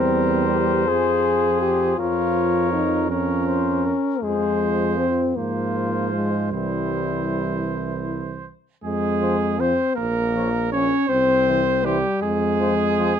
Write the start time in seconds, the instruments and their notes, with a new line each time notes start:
Already playing: tuba E2, trombone G3, french horn C4, trumpet A#4 C5
0.49 french horn G4
0.87 tuba F2, trombone F3, french horn G#4, trumpet G#4
1.61 french horn G4
1.98 tuba F2, trombone F3, french horn F4, trumpet A#4 C#5
2.73 french horn D#4
3.10 trombone F3, french horn C#4, trumpet A#4 C#5
3.47 trumpet C5
3.86 trumpet A#4
4.22 tuba F2, trombone F3, french horn G#3, trumpet G#4 C5
4.98 french horn C4
5.36 tuba G#2, trombone F3, french horn A#3, trumpet F4 C5
6.13 french horn G#3
6.52 tuba C2, trombone E3, french horn G3, trumpet E4 C5
8.84 tuba F2, french horn G#3, trumpet G#4
9.22 trombone F3, trumpet C5
9.59 trombone F3, french horn C4, trumpet C5
9.95 tuba A#1, french horn A#3, trumpet A#4
10.36 trombone F3, trumpet C#5
10.72 trombone F3, french horn C#4, trumpet C#5
11.09 tuba C2, french horn C4, trumpet C5
11.48 trombone E3, trumpet C5
11.84 trombone E3, french horn G3, trumpet G4 C5
12.22 tuba F2, french horn G#3, trumpet G#4
12.60 trombone F3, trumpet C5
12.99 trombone F3, trumpet C5